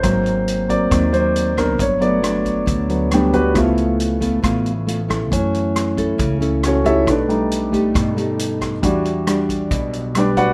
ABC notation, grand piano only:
X:1
M:4/4
L:1/8
Q:1/4=136
K:Glyd
V:1 name="Grand piano"
=c2 z d2 ^B2 ^A | c d3 z2 [G,B,DG] [B,FGB] | [A,E^EA] z6 z | z6 [CFAc] [EAce] |
[DABd] z6 z | z6 [DGBd] [FBdf] |]
V:2 name="Grand piano"
[F,^A,^B,]3 [F,A,B,] z4 | z [F,A,B,] z3 [F,A,B,] z2 | [^E,A,B,]8 | [E,A,C] z6 z |
z [G,A,^D] z6 | [G,DF]8 |]